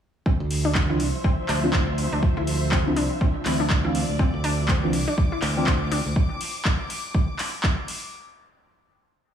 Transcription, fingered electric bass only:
0, 0, Header, 1, 2, 480
1, 0, Start_track
1, 0, Key_signature, -1, "minor"
1, 0, Tempo, 491803
1, 254, Time_signature, 4, 2, 24, 8
1, 9116, End_track
2, 0, Start_track
2, 0, Title_t, "Fingered electric bass"
2, 0, Program_c, 0, 33
2, 392, Note_on_c, 0, 38, 84
2, 972, Note_off_c, 0, 38, 0
2, 972, Note_on_c, 0, 36, 73
2, 1070, Note_off_c, 0, 36, 0
2, 1452, Note_on_c, 0, 38, 95
2, 2005, Note_off_c, 0, 38, 0
2, 2072, Note_on_c, 0, 38, 77
2, 2143, Note_off_c, 0, 38, 0
2, 2313, Note_on_c, 0, 38, 92
2, 2893, Note_off_c, 0, 38, 0
2, 2893, Note_on_c, 0, 36, 72
2, 2991, Note_off_c, 0, 36, 0
2, 3373, Note_on_c, 0, 38, 99
2, 3925, Note_off_c, 0, 38, 0
2, 3993, Note_on_c, 0, 38, 74
2, 4063, Note_off_c, 0, 38, 0
2, 4233, Note_on_c, 0, 38, 89
2, 4813, Note_off_c, 0, 38, 0
2, 4813, Note_on_c, 0, 36, 81
2, 4911, Note_off_c, 0, 36, 0
2, 5293, Note_on_c, 0, 38, 103
2, 5845, Note_off_c, 0, 38, 0
2, 5912, Note_on_c, 0, 38, 78
2, 5982, Note_off_c, 0, 38, 0
2, 9116, End_track
0, 0, End_of_file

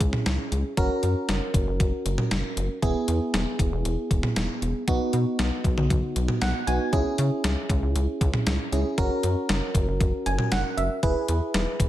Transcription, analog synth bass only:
0, 0, Header, 1, 2, 480
1, 0, Start_track
1, 0, Tempo, 512821
1, 724, Time_signature, 4, 2, 24, 8
1, 11127, End_track
2, 0, Start_track
2, 0, Title_t, "Analog synth bass"
2, 0, Program_c, 0, 38
2, 4, Note_on_c, 0, 37, 105
2, 114, Note_off_c, 0, 37, 0
2, 244, Note_on_c, 0, 37, 92
2, 354, Note_off_c, 0, 37, 0
2, 485, Note_on_c, 0, 37, 90
2, 594, Note_off_c, 0, 37, 0
2, 724, Note_on_c, 0, 30, 96
2, 834, Note_off_c, 0, 30, 0
2, 965, Note_on_c, 0, 42, 94
2, 1074, Note_off_c, 0, 42, 0
2, 1204, Note_on_c, 0, 30, 94
2, 1314, Note_off_c, 0, 30, 0
2, 1442, Note_on_c, 0, 30, 101
2, 1553, Note_off_c, 0, 30, 0
2, 1564, Note_on_c, 0, 30, 90
2, 1674, Note_off_c, 0, 30, 0
2, 1685, Note_on_c, 0, 30, 102
2, 1794, Note_off_c, 0, 30, 0
2, 1924, Note_on_c, 0, 30, 96
2, 2034, Note_off_c, 0, 30, 0
2, 2165, Note_on_c, 0, 30, 95
2, 2274, Note_off_c, 0, 30, 0
2, 2404, Note_on_c, 0, 30, 94
2, 2514, Note_off_c, 0, 30, 0
2, 2644, Note_on_c, 0, 28, 116
2, 2754, Note_off_c, 0, 28, 0
2, 2883, Note_on_c, 0, 40, 101
2, 2994, Note_off_c, 0, 40, 0
2, 3124, Note_on_c, 0, 28, 100
2, 3234, Note_off_c, 0, 28, 0
2, 3362, Note_on_c, 0, 28, 92
2, 3473, Note_off_c, 0, 28, 0
2, 3483, Note_on_c, 0, 28, 100
2, 3593, Note_off_c, 0, 28, 0
2, 3604, Note_on_c, 0, 28, 103
2, 3714, Note_off_c, 0, 28, 0
2, 3845, Note_on_c, 0, 28, 102
2, 3954, Note_off_c, 0, 28, 0
2, 4084, Note_on_c, 0, 28, 97
2, 4194, Note_off_c, 0, 28, 0
2, 4324, Note_on_c, 0, 28, 93
2, 4434, Note_off_c, 0, 28, 0
2, 4565, Note_on_c, 0, 35, 101
2, 4674, Note_off_c, 0, 35, 0
2, 4805, Note_on_c, 0, 47, 94
2, 4914, Note_off_c, 0, 47, 0
2, 5045, Note_on_c, 0, 35, 103
2, 5154, Note_off_c, 0, 35, 0
2, 5282, Note_on_c, 0, 35, 99
2, 5393, Note_off_c, 0, 35, 0
2, 5404, Note_on_c, 0, 35, 97
2, 5514, Note_off_c, 0, 35, 0
2, 5526, Note_on_c, 0, 35, 102
2, 5635, Note_off_c, 0, 35, 0
2, 5765, Note_on_c, 0, 35, 101
2, 5874, Note_off_c, 0, 35, 0
2, 6006, Note_on_c, 0, 35, 93
2, 6115, Note_off_c, 0, 35, 0
2, 6245, Note_on_c, 0, 35, 95
2, 6355, Note_off_c, 0, 35, 0
2, 6485, Note_on_c, 0, 37, 104
2, 6594, Note_off_c, 0, 37, 0
2, 6725, Note_on_c, 0, 49, 102
2, 6834, Note_off_c, 0, 49, 0
2, 6964, Note_on_c, 0, 37, 90
2, 7074, Note_off_c, 0, 37, 0
2, 7202, Note_on_c, 0, 37, 103
2, 7313, Note_off_c, 0, 37, 0
2, 7325, Note_on_c, 0, 37, 90
2, 7434, Note_off_c, 0, 37, 0
2, 7444, Note_on_c, 0, 37, 99
2, 7554, Note_off_c, 0, 37, 0
2, 7685, Note_on_c, 0, 37, 104
2, 7794, Note_off_c, 0, 37, 0
2, 7924, Note_on_c, 0, 37, 94
2, 8034, Note_off_c, 0, 37, 0
2, 8165, Note_on_c, 0, 37, 89
2, 8274, Note_off_c, 0, 37, 0
2, 8405, Note_on_c, 0, 30, 99
2, 8514, Note_off_c, 0, 30, 0
2, 8645, Note_on_c, 0, 42, 94
2, 8755, Note_off_c, 0, 42, 0
2, 8885, Note_on_c, 0, 30, 93
2, 8995, Note_off_c, 0, 30, 0
2, 9122, Note_on_c, 0, 30, 102
2, 9233, Note_off_c, 0, 30, 0
2, 9246, Note_on_c, 0, 30, 87
2, 9355, Note_off_c, 0, 30, 0
2, 9365, Note_on_c, 0, 30, 104
2, 9475, Note_off_c, 0, 30, 0
2, 9605, Note_on_c, 0, 30, 97
2, 9714, Note_off_c, 0, 30, 0
2, 9845, Note_on_c, 0, 30, 95
2, 9955, Note_off_c, 0, 30, 0
2, 10085, Note_on_c, 0, 30, 95
2, 10194, Note_off_c, 0, 30, 0
2, 10324, Note_on_c, 0, 28, 108
2, 10434, Note_off_c, 0, 28, 0
2, 10564, Note_on_c, 0, 40, 100
2, 10674, Note_off_c, 0, 40, 0
2, 10804, Note_on_c, 0, 28, 105
2, 10914, Note_off_c, 0, 28, 0
2, 11042, Note_on_c, 0, 28, 97
2, 11127, Note_off_c, 0, 28, 0
2, 11127, End_track
0, 0, End_of_file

